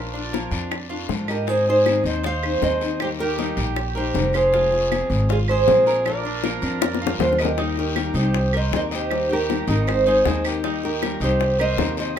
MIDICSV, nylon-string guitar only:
0, 0, Header, 1, 2, 480
1, 0, Start_track
1, 0, Tempo, 381922
1, 1858, Time_signature, 4, 2, 24, 8
1, 15320, End_track
2, 0, Start_track
2, 0, Title_t, "Nylon-string guitar"
2, 0, Program_c, 0, 24
2, 0, Note_on_c, 0, 70, 76
2, 660, Note_off_c, 0, 70, 0
2, 1641, Note_on_c, 0, 70, 84
2, 1871, Note_off_c, 0, 70, 0
2, 1871, Note_on_c, 0, 72, 95
2, 2111, Note_off_c, 0, 72, 0
2, 2132, Note_on_c, 0, 72, 96
2, 2589, Note_off_c, 0, 72, 0
2, 2594, Note_on_c, 0, 75, 86
2, 2832, Note_off_c, 0, 75, 0
2, 2843, Note_on_c, 0, 77, 109
2, 3307, Note_off_c, 0, 77, 0
2, 3312, Note_on_c, 0, 75, 94
2, 3790, Note_off_c, 0, 75, 0
2, 3795, Note_on_c, 0, 72, 91
2, 3858, Note_off_c, 0, 72, 0
2, 4026, Note_on_c, 0, 70, 101
2, 4994, Note_on_c, 0, 72, 96
2, 5008, Note_off_c, 0, 70, 0
2, 5451, Note_off_c, 0, 72, 0
2, 5466, Note_on_c, 0, 72, 89
2, 6688, Note_on_c, 0, 68, 87
2, 6695, Note_off_c, 0, 72, 0
2, 6751, Note_off_c, 0, 68, 0
2, 6923, Note_on_c, 0, 72, 100
2, 7628, Note_off_c, 0, 72, 0
2, 7633, Note_on_c, 0, 74, 86
2, 9013, Note_off_c, 0, 74, 0
2, 9067, Note_on_c, 0, 72, 82
2, 9283, Note_off_c, 0, 72, 0
2, 9318, Note_on_c, 0, 70, 81
2, 9774, Note_off_c, 0, 70, 0
2, 9789, Note_on_c, 0, 70, 88
2, 10228, Note_off_c, 0, 70, 0
2, 10267, Note_on_c, 0, 72, 81
2, 10754, Note_off_c, 0, 72, 0
2, 10767, Note_on_c, 0, 75, 80
2, 10997, Note_off_c, 0, 75, 0
2, 11012, Note_on_c, 0, 75, 89
2, 11075, Note_off_c, 0, 75, 0
2, 11250, Note_on_c, 0, 72, 92
2, 11722, Note_off_c, 0, 72, 0
2, 11727, Note_on_c, 0, 70, 93
2, 12183, Note_off_c, 0, 70, 0
2, 12198, Note_on_c, 0, 70, 85
2, 12664, Note_off_c, 0, 70, 0
2, 12669, Note_on_c, 0, 72, 91
2, 12895, Note_off_c, 0, 72, 0
2, 12910, Note_on_c, 0, 72, 84
2, 13148, Note_off_c, 0, 72, 0
2, 13148, Note_on_c, 0, 70, 88
2, 13619, Note_off_c, 0, 70, 0
2, 13634, Note_on_c, 0, 70, 91
2, 14120, Note_off_c, 0, 70, 0
2, 14126, Note_on_c, 0, 72, 90
2, 14586, Note_off_c, 0, 72, 0
2, 14591, Note_on_c, 0, 75, 99
2, 15032, Note_off_c, 0, 75, 0
2, 15080, Note_on_c, 0, 75, 89
2, 15306, Note_off_c, 0, 75, 0
2, 15320, End_track
0, 0, End_of_file